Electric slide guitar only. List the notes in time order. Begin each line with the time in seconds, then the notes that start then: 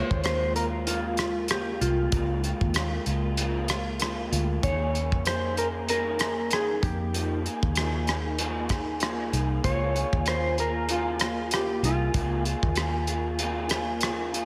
Already playing: C#5
0.04 C5
0.24 C5
0.56 A#4
0.87 F4
1.51 G4
1.81 F4
4.64 C#5
5.27 C5
5.58 A#4
5.90 A#4
6.53 G#4
6.84 G4
9.65 C#5
10.28 C5
10.60 A#4
10.91 F4
11.53 G4
11.85 F4